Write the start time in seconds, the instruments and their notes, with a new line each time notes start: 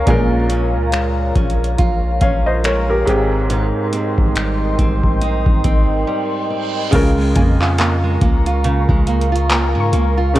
Already playing: steel-string acoustic guitar G#3 A#3, ambient pad A#4 C#5 F5 A#5, grand piano C#5
0.06 808-style bass A#1, grand piano A#2 G#3 C#4, steel-string acoustic guitar A#2 F4, kick, closed hi-hat
0.10 grand piano A#4
0.50 steel-string acoustic guitar C#4, closed hi-hat
0.75 808-style bass C#2
0.92 steel-string acoustic guitar G#3, finger snap, closed hi-hat
1.36 808-style bass A#1, steel-string acoustic guitar C#4, kick, closed hi-hat
1.50 closed hi-hat
1.64 closed hi-hat
1.78 808-style bass A#1, steel-string acoustic guitar F4, kick, closed hi-hat
2.21 808-style bass A#1, steel-string acoustic guitar C#4, grand piano C#5 F5, kick, closed hi-hat
2.46 grand piano C5 D#5
2.64 steel-string acoustic guitar G#3, grand piano A#4 C#5, finger snap, closed hi-hat
2.89 grand piano G4 A#4
3.05 808-style bass G#1, grand piano G#2 G#3 C4, steel-string acoustic guitar G#2, ambient pad D#5 G5 C6, closed hi-hat
3.10 grand piano G4
3.50 steel-string acoustic guitar G#2 D#4, closed hi-hat
3.93 steel-string acoustic guitar C4, closed hi-hat
4.18 808-style bass G#1, kick
4.36 steel-string acoustic guitar G3, finger snap, closed hi-hat
4.79 808-style bass G#1, steel-string acoustic guitar C4, kick, closed hi-hat
5.03 kick
5.21 808-style bass A#1, steel-string acoustic guitar D#4, closed hi-hat, reverse cymbal
5.46 808-style bass G#1, kick
5.64 steel-string acoustic guitar C4, kick, closed hi-hat
6.07 steel-string acoustic guitar G3
6.50 steel-string acoustic guitar C4
6.91 808-style bass C#2, grand piano C#3 G#3 F4, steel-string acoustic guitar C#3, ambient pad A#4 F5 A#5 C#6, kick, closed hi-hat, crash
6.95 grand piano A#4
7.18 steel-string acoustic guitar G#3
7.36 808-style bass F2, steel-string acoustic guitar A#3, synth pluck G#5, kick, closed hi-hat
7.61 steel-string acoustic guitar F4, clap
7.78 steel-string acoustic guitar A#3, clap, closed hi-hat
8.04 steel-string acoustic guitar G#3
8.21 808-style bass C#2, steel-string acoustic guitar A#3, kick, closed hi-hat
8.46 steel-string acoustic guitar F4, closed hi-hat
8.64 steel-string acoustic guitar C#3, closed hi-hat
8.89 808-style bass C#2, steel-string acoustic guitar G#3, kick
9.07 steel-string acoustic guitar A#3, closed hi-hat
9.22 closed hi-hat
9.32 steel-string acoustic guitar F4, closed hi-hat
9.50 steel-string acoustic guitar A#3, synth pluck A#5, clap, closed hi-hat
9.75 808-style bass G#2, steel-string acoustic guitar G#3
9.80 synth pluck C#6
9.93 808-style bass C#2, steel-string acoustic guitar A#3, closed hi-hat
10.18 steel-string acoustic guitar F4
10.34 grand piano C#3 G#3, steel-string acoustic guitar C#3, closed hi-hat